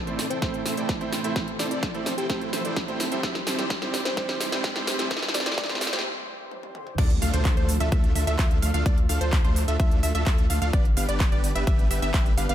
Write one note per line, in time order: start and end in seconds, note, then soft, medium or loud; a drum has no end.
0.00 6.94 E3 medium
0.00 3.20 A3 medium
0.00 6.94 C4 medium
0.00 1.34 A4 medium
0.00 6.94 C5 medium
0.00 riser medium
0.06 0.19 A2 medium
0.06 0.19 A3 medium
0.06 0.19 C4 medium
0.06 0.26 C4 medium
0.06 0.26 E4 medium
0.06 0.19 E4 medium
0.06 0.26 A4 medium
0.06 0.26 C5 medium
0.06 0.19 C5 loud
0.06 0.26 D5 medium
0.06 closed hi-hat soft
0.19 snare medium
0.19 open hi-hat loud
0.30 0.39 C4 medium
0.30 0.39 E4 medium
0.30 0.39 A4 medium
0.30 0.77 C5 medium
0.30 0.39 C5 medium
0.30 0.39 G5 loud
0.30 closed hi-hat soft
0.41 0.74 A2 loud
0.41 0.74 A3 medium
0.41 0.74 C4 medium
0.41 0.63 C4 medium
0.41 0.63 E4 medium
0.41 0.75 E4 medium
0.41 0.63 A4 medium
0.41 0.63 C5 medium
0.41 0.75 C5 loud
0.41 0.63 G5 medium
0.41 kick loud
0.41 snare medium
0.41 closed hi-hat soft
0.54 closed hi-hat soft
0.66 0.74 C4 medium
0.66 0.74 E4 medium
0.66 0.74 A4 medium
0.66 0.75 C5 medium
0.66 0.74 E5 medium
0.66 snare medium
0.66 open hi-hat loud
0.77 0.98 A2 medium
0.77 0.98 A3 medium
0.77 0.98 C4 medium
0.77 0.89 C4 medium
0.77 0.89 E4 medium
0.77 0.98 E4 medium
0.77 0.89 A4 medium
0.77 0.89 C5 medium
0.77 0.98 D5 medium
0.77 0.89 G5 medium
0.77 closed hi-hat soft
0.89 kick loud
0.89 snare medium
0.89 closed hi-hat soft
1.00 1.20 A2 loud
1.00 1.20 A3 medium
1.00 1.20 C4 medium
1.00 1.20 E4 medium
1.00 1.20 A4 medium
1.00 1.20 C5 medium
1.00 1.20 C5 loud
1.00 1.20 G5 medium
1.00 closed hi-hat soft
1.13 snare medium
1.13 open hi-hat loud
1.23 1.43 A2 medium
1.23 1.43 A3 medium
1.23 1.43 C4 medium
1.23 1.33 C4 loud
1.23 1.33 E4 medium
1.23 1.44 E4 medium
1.23 1.33 A4 medium
1.23 1.33 C5 medium
1.23 1.44 C5 loud
1.23 1.33 E5 loud
1.23 closed hi-hat soft
1.36 1.48 C4 medium
1.36 1.48 E4 medium
1.36 6.94 G4 medium
1.36 1.48 A4 medium
1.36 1.48 C5 medium
1.36 1.48 E5 medium
1.36 kick loud
1.36 snare medium
1.36 closed hi-hat medium
1.48 closed hi-hat soft
1.59 1.71 A2 medium
1.59 1.71 A3 medium
1.59 1.69 C4 medium
1.59 1.71 C4 medium
1.59 1.69 E4 medium
1.59 1.71 E4 medium
1.59 1.69 A4 medium
1.59 1.69 C5 medium
1.59 1.72 C5 medium
1.59 1.67 D5 medium
1.59 1.69 A5 loud
1.59 snare medium
1.59 open hi-hat loud
1.71 1.92 C4 medium
1.71 1.92 E4 medium
1.71 1.92 A4 medium
1.71 1.92 C5 medium
1.71 1.92 D5 medium
1.71 1.78 D5 medium
1.71 closed hi-hat medium
1.83 kick loud
1.83 snare medium
1.83 closed hi-hat soft
1.94 2.06 A2 medium
1.94 2.06 A3 medium
1.94 2.14 C4 medium
1.94 2.06 C4 medium
1.94 2.14 E4 medium
1.94 2.07 E4 medium
1.94 2.14 A4 medium
1.94 2.14 C5 medium
1.94 2.07 C5 loud
1.94 2.14 D5 medium
1.94 closed hi-hat soft
2.06 2.16 C5 medium
2.06 snare medium
2.06 open hi-hat loud
2.18 2.27 C4 medium
2.18 2.27 E4 medium
2.18 2.25 G4 medium
2.18 2.27 A4 medium
2.18 2.27 C5 medium
2.18 2.27 G5 loud
2.18 closed hi-hat medium
2.29 2.62 A2 loud
2.29 2.62 A3 medium
2.29 2.50 C4 medium
2.29 2.62 C4 medium
2.29 2.50 E4 medium
2.29 2.62 E4 medium
2.29 2.37 G4 medium
2.29 2.50 A4 medium
2.29 2.50 C5 medium
2.29 2.62 C5 loud
2.29 2.50 G5 medium
2.29 kick loud
2.29 snare medium
2.29 closed hi-hat medium
2.41 closed hi-hat soft
2.53 2.62 C4 medium
2.53 2.62 E4 medium
2.53 2.62 A4 medium
2.53 2.62 C5 medium
2.53 2.62 E5 medium
2.53 snare medium
2.53 open hi-hat loud
2.64 2.85 A2 medium
2.64 2.85 A3 medium
2.64 2.77 C4 medium
2.64 2.85 C4 medium
2.64 2.77 E4 medium
2.64 2.86 E4 medium
2.64 2.77 A4 medium
2.64 2.77 C5 medium
2.64 2.86 D5 medium
2.64 2.77 G5 medium
2.64 closed hi-hat soft
2.76 kick loud
2.76 snare medium
2.76 closed hi-hat medium
2.88 3.07 A2 loud
2.88 3.07 A3 medium
2.88 3.07 C4 medium
2.88 3.08 C4 medium
2.88 3.07 E4 medium
2.88 3.08 E4 medium
2.88 3.07 A4 medium
2.88 3.07 C5 medium
2.88 3.08 C5 loud
2.88 3.07 G5 medium
2.88 closed hi-hat soft
3.00 snare medium
3.00 open hi-hat loud
3.11 3.31 C3 loud
3.11 3.31 G3 medium
3.11 3.31 C4 medium
3.11 3.21 C4 loud
3.11 3.21 E4 medium
3.11 3.31 E4 medium
3.11 3.21 A4 medium
3.11 3.21 C5 medium
3.11 3.31 C5 loud
3.11 3.21 E5 loud
3.11 closed hi-hat soft
3.23 6.95 G3 medium
3.23 3.35 C4 medium
3.23 3.35 E4 medium
3.23 3.35 G4 medium
3.23 3.35 C5 medium
3.23 3.35 E5 medium
3.23 kick loud
3.23 snare medium
3.23 closed hi-hat medium
3.35 snare medium
3.35 closed hi-hat soft
3.46 3.59 C3 medium
3.46 3.59 G3 medium
3.46 3.57 C4 medium
3.46 3.59 C4 medium
3.46 3.57 E4 medium
3.46 3.59 E4 medium
3.46 3.57 G4 medium
3.46 3.57 C5 medium
3.46 3.59 C5 medium
3.46 3.57 A5 loud
3.46 snare medium
3.46 open hi-hat loud
3.58 3.79 C4 medium
3.58 3.79 E4 medium
3.58 3.79 G4 medium
3.58 3.79 C5 medium
3.58 3.79 D5 medium
3.58 snare medium
3.58 closed hi-hat medium
3.70 kick loud
3.70 snare medium
3.70 closed hi-hat medium
3.81 3.94 C3 medium
3.81 3.94 G3 medium
3.81 4.01 C4 medium
3.81 3.94 C4 medium
3.81 4.01 E4 medium
3.81 3.94 E4 medium
3.81 4.01 G4 medium
3.81 4.01 C5 medium
3.81 3.94 C5 loud
3.81 4.01 D5 medium
3.81 snare medium
3.81 closed hi-hat soft
3.94 snare medium
3.94 open hi-hat loud
4.05 4.14 C4 medium
4.05 4.14 E4 medium
4.05 4.14 G4 medium
4.05 4.14 C5 medium
4.05 4.52 C5 loud
4.05 4.14 G5 loud
4.05 snare medium
4.05 closed hi-hat medium
4.17 4.49 C3 loud
4.17 4.49 G3 medium
4.17 4.49 C4 medium
4.17 4.38 C4 medium
4.17 4.38 E4 medium
4.17 4.50 E4 medium
4.17 4.38 G4 medium
4.17 4.38 C5 medium
4.17 4.50 C5 loud
4.17 4.38 G5 loud
4.17 kick loud
4.17 snare medium
4.17 closed hi-hat medium
4.29 snare medium
4.29 closed hi-hat soft
4.41 4.50 C4 medium
4.41 4.50 E4 medium
4.41 4.50 G4 medium
4.41 4.50 C5 medium
4.41 4.50 E5 medium
4.41 snare loud
4.41 open hi-hat loud
4.52 4.73 C3 medium
4.52 4.73 G3 medium
4.52 4.73 C4 medium
4.52 4.64 C4 medium
4.52 4.64 E4 medium
4.52 4.73 E4 medium
4.52 4.64 G4 medium
4.52 4.64 C5 medium
4.52 4.73 D5 medium
4.52 4.64 G5 medium
4.52 snare medium
4.52 closed hi-hat medium
4.64 kick loud
4.64 snare loud
4.64 closed hi-hat medium
4.75 4.95 C3 loud
4.75 4.95 G3 medium
4.75 4.95 C4 medium
4.75 4.95 E4 medium
4.75 4.95 G4 medium
4.75 4.95 C5 medium
4.75 4.95 C5 loud
4.75 4.95 G5 medium
4.75 snare medium
4.75 closed hi-hat soft
4.87 snare loud
4.87 open hi-hat loud
4.99 5.18 C3 loud
4.99 5.18 G3 medium
4.99 5.18 C4 medium
4.99 5.08 C4 loud
4.99 5.08 E4 medium
4.99 5.19 E4 medium
4.99 5.08 G4 medium
4.99 5.08 C5 medium
4.99 5.19 C5 loud
4.99 5.08 E5 loud
4.99 snare medium
4.99 closed hi-hat medium
5.11 5.23 C4 medium
5.11 5.23 E4 medium
5.11 5.23 G4 medium
5.11 5.23 C5 medium
5.11 5.23 E5 loud
5.11 kick loud
5.11 snare loud
5.11 closed hi-hat medium
5.17 snare medium
5.23 snare medium
5.23 closed hi-hat soft
5.28 snare medium
5.34 5.46 C3 medium
5.34 5.46 G3 medium
5.34 5.46 C4 medium
5.34 5.44 C4 medium
5.34 5.44 E4 medium
5.34 5.46 E4 medium
5.34 5.44 G4 medium
5.34 5.44 C5 medium
5.34 5.47 C5 medium
5.34 5.42 D5 medium
5.34 5.44 A5 loud
5.34 snare loud
5.34 open hi-hat loud
5.40 snare medium
5.46 5.67 C4 medium
5.46 5.67 E4 medium
5.46 5.67 G4 medium
5.46 5.67 C5 medium
5.46 5.53 D5 medium
5.46 5.67 D5 medium
5.46 snare medium
5.46 closed hi-hat medium
5.52 snare medium
5.58 6.05 D5 medium
5.58 kick loud
5.58 snare loud
5.58 closed hi-hat medium
5.64 snare medium
5.69 5.81 C3 loud
5.69 5.81 G3 medium
5.69 5.81 C4 medium
5.69 5.89 C4 medium
5.69 5.89 E4 medium
5.69 5.82 E4 medium
5.69 5.89 G4 medium
5.69 5.89 C5 medium
5.69 5.82 C5 loud
5.69 5.89 D5 medium
5.69 snare medium
5.69 closed hi-hat soft
5.75 snare medium
5.81 snare loud
5.81 open hi-hat loud
5.87 snare medium
5.93 6.02 C4 medium
5.93 6.02 E4 medium
5.93 6.02 G4 medium
5.93 6.02 C5 medium
5.93 6.02 G5 loud
5.93 snare medium
5.93 closed hi-hat medium
5.99 snare medium
6.51 high tom medium
6.63 high tom medium
6.75 mid tom medium
6.87 mid tom medium
6.98 7.19 D2 loud
6.98 12.55 D3 medium
6.98 10.70 F3 medium
6.98 7.10 A3 medium
6.98 10.70 A3 medium
6.98 7.10 D4 medium
6.98 7.10 F4 medium
6.98 10.70 F4 medium
6.98 7.10 A4 medium
6.98 10.70 A4 medium
6.98 7.10 D5 loud
6.98 kick loud
6.98 closed hi-hat medium
6.98 crash loud
6.98 impact medium
7.10 closed hi-hat soft
7.22 7.31 D2 medium
7.22 7.32 A3 medium
7.22 7.32 D4 medium
7.22 7.32 F4 medium
7.22 7.32 A4 medium
7.22 7.32 F5 loud
7.22 open hi-hat loud
7.33 7.55 D2 loud
7.33 7.54 A3 medium
7.33 7.54 D4 medium
7.33 7.54 F4 medium
7.33 7.54 A4 medium
7.33 7.54 C5 medium
7.33 closed hi-hat medium
7.45 kick loud
7.45 clap loud
7.45 closed hi-hat medium
7.57 7.78 D2 loud
7.57 7.76 A3 medium
7.57 7.76 D4 medium
7.57 7.76 F4 medium
7.57 7.76 A4 medium
7.57 7.76 C5 medium
7.57 closed hi-hat soft
7.69 open hi-hat loud
7.80 7.90 D2 medium
7.80 7.89 A3 medium
7.80 7.89 D4 medium
7.80 7.89 F4 medium
7.80 7.89 A4 medium
7.80 7.89 E5 loud
7.80 closed hi-hat medium
7.92 8.13 D2 medium
7.92 8.13 A3 medium
7.92 8.13 D4 medium
7.92 8.13 F4 medium
7.92 8.13 A4 medium
7.92 8.13 E5 medium
7.92 kick loud
7.92 closed hi-hat medium
8.04 closed hi-hat soft
8.15 8.25 D2 loud
8.15 8.24 A3 medium
8.15 8.24 D4 medium
8.15 8.24 F4 medium
8.15 8.24 A4 medium
8.15 8.24 E5 medium
8.15 open hi-hat loud
8.27 8.37 D2 medium
8.27 8.36 A3 medium
8.27 8.36 D4 medium
8.27 8.36 F4 medium
8.27 8.36 A4 medium
8.27 8.36 E5 loud
8.27 closed hi-hat medium
8.39 8.60 D2 loud
8.39 8.58 A3 medium
8.39 8.58 D4 medium
8.39 8.58 F4 medium
8.39 8.58 A4 medium
8.39 8.58 E5 loud
8.39 kick loud
8.39 clap loud
8.39 closed hi-hat medium
8.51 closed hi-hat soft
8.62 8.72 D2 loud
8.62 8.71 A3 medium
8.62 8.71 D4 medium
8.62 8.71 F4 medium
8.62 8.71 A4 medium
8.62 8.71 F5 medium
8.62 open hi-hat loud
8.74 8.83 D2 loud
8.74 8.84 A3 loud
8.74 8.84 D4 medium
8.74 8.84 F4 medium
8.74 8.84 A4 medium
8.74 8.84 F5 loud
8.74 closed hi-hat medium
8.86 9.07 D2 loud
8.86 8.98 A3 medium
8.86 8.98 D4 medium
8.86 8.98 F4 medium
8.86 8.98 A4 medium
8.86 8.98 D5 loud
8.86 kick loud
8.86 closed hi-hat medium
8.98 closed hi-hat soft
9.09 9.19 D2 loud
9.09 9.19 A3 medium
9.09 9.19 D4 medium
9.09 9.19 F4 medium
9.09 9.19 A4 medium
9.09 9.19 F5 loud
9.09 open hi-hat loud
9.21 9.42 D2 medium
9.21 9.42 A3 medium
9.21 9.42 D4 medium
9.21 9.42 F4 medium
9.21 9.42 A4 medium
9.21 9.42 C5 medium
9.21 closed hi-hat medium
9.33 kick loud
9.33 clap loud
9.33 closed hi-hat medium
9.44 9.66 D2 loud
9.44 9.64 A3 medium
9.44 9.64 D4 medium
9.44 9.64 F4 medium
9.44 9.64 A4 medium
9.44 9.64 C5 medium
9.44 closed hi-hat soft
9.56 clap soft
9.56 open hi-hat loud
9.68 9.77 D2 medium
9.68 9.77 A3 medium
9.68 9.77 D4 medium
9.68 9.77 F4 medium
9.68 9.77 A4 medium
9.68 9.77 E5 loud
9.68 closed hi-hat medium
9.80 10.01 D2 medium
9.80 10.00 A3 medium
9.80 10.00 D4 medium
9.80 10.00 F4 medium
9.80 10.00 A4 medium
9.80 10.00 E5 medium
9.80 10.00 E5 loud
9.80 kick loud
9.80 closed hi-hat medium
9.91 closed hi-hat soft
10.03 10.12 D2 loud
10.03 10.12 A3 medium
10.03 10.12 D4 medium
10.03 10.12 F4 medium
10.03 10.12 A4 medium
10.03 10.12 E5 loud
10.03 10.12 E5 medium
10.03 open hi-hat loud
10.15 10.24 D2 medium
10.15 10.24 A3 loud
10.15 10.24 D4 medium
10.15 10.24 F4 medium
10.15 10.24 A4 medium
10.15 10.24 E5 loud
10.15 closed hi-hat medium
10.26 10.48 D2 loud
10.26 10.46 A3 medium
10.26 10.46 D4 medium
10.26 10.46 F4 medium
10.26 10.46 A4 medium
10.26 10.46 E5 loud
10.26 kick loud
10.26 clap loud
10.26 closed hi-hat medium
10.38 closed hi-hat soft
10.50 10.59 D2 loud
10.50 10.59 A3 medium
10.50 10.59 D4 medium
10.50 10.59 F4 medium
10.50 10.59 A4 medium
10.50 10.59 F5 medium
10.50 open hi-hat loud
10.62 10.71 D2 medium
10.62 10.72 A3 loud
10.62 10.72 D4 medium
10.62 10.72 F4 medium
10.62 10.72 A4 medium
10.62 10.72 F5 loud
10.62 closed hi-hat medium
10.73 10.94 G1 loud
10.73 12.55 G3 medium
10.73 10.85 B3 medium
10.73 12.55 B3 medium
10.73 10.85 D4 medium
10.73 12.55 G4 medium
10.73 10.85 G4 medium
10.73 10.85 B4 medium
10.73 12.55 B4 medium
10.73 10.85 D5 loud
10.73 kick loud
10.73 closed hi-hat medium
10.85 closed hi-hat soft
10.97 11.06 G1 loud
10.97 11.07 B3 medium
10.97 11.07 D4 medium
10.97 11.07 G4 medium
10.97 11.07 B4 medium
10.97 11.07 F5 loud
10.97 open hi-hat loud
11.08 11.30 G1 medium
11.08 11.29 B3 medium
11.08 11.29 D4 medium
11.08 11.29 G4 medium
11.08 11.29 B4 medium
11.08 11.29 D5 medium
11.08 closed hi-hat medium
11.20 kick loud
11.20 clap loud
11.20 closed hi-hat medium
11.32 11.53 G1 loud
11.32 11.51 B3 medium
11.32 11.51 D4 medium
11.32 11.51 G4 medium
11.32 11.51 B4 medium
11.32 11.51 D5 loud
11.32 11.51 D5 medium
11.32 closed hi-hat soft
11.44 open hi-hat loud
11.55 11.65 G1 loud
11.55 11.64 B3 medium
11.55 11.64 D4 medium
11.55 11.64 G4 medium
11.55 11.64 B4 medium
11.55 11.64 E5 loud
11.55 closed hi-hat medium
11.67 11.88 G1 loud
11.67 11.88 B3 medium
11.67 11.88 D4 medium
11.67 11.88 G4 medium
11.67 11.88 B4 medium
11.67 11.88 E5 medium
11.67 11.88 E5 loud
11.67 kick loud
11.67 closed hi-hat medium
11.79 closed hi-hat soft
11.90 12.00 G1 loud
11.90 11.99 B3 medium
11.90 11.99 D4 medium
11.90 11.99 G4 medium
11.90 11.99 B4 medium
11.90 11.99 E5 loud
11.90 12.00 E5 medium
11.90 open hi-hat loud
12.02 12.12 G1 medium
12.02 12.11 B3 medium
12.02 12.11 D4 medium
12.02 12.11 G4 medium
12.02 12.11 B4 medium
12.02 12.11 E5 loud
12.02 closed hi-hat soft
12.14 12.35 G1 loud
12.14 12.33 B3 medium
12.14 12.33 D4 medium
12.14 12.33 G4 medium
12.14 12.33 B4 medium
12.14 12.33 E5 loud
12.14 kick loud
12.14 clap loud
12.14 closed hi-hat medium
12.26 closed hi-hat soft
12.37 12.47 G1 loud
12.37 12.46 B3 medium
12.37 12.46 D4 medium
12.37 12.46 G4 medium
12.37 12.46 B4 medium
12.37 12.46 F5 loud
12.37 12.46 F5 medium
12.37 open hi-hat loud
12.49 12.55 G1 loud
12.49 12.55 B3 loud
12.49 12.55 D4 medium
12.49 12.55 G4 medium
12.49 12.55 B4 medium
12.49 12.55 F5 loud
12.49 closed hi-hat soft